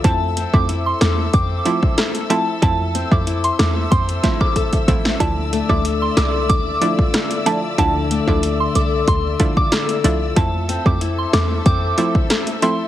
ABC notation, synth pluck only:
X:1
M:4/4
L:1/16
Q:1/4=93
K:F
V:1 name="Synth pluck"
[F,A,CE]3 [F,A,CE] z6 [F,A,CE] z3 [F,A,CE] z | [F,A,CE]3 [F,A,CE] z6 [F,A,CE] z3 [F,A,CE] z | [F,A,DE]3 [F,A,DE] z6 [F,A,DE] z3 [F,A,DE] z | [F,A,DE]3 [F,A,DE] z6 [F,A,DE] z3 [F,A,DE] z |
[F,A,CE]3 [F,A,CE] z6 [F,A,CE] z3 [F,A,CE] z |]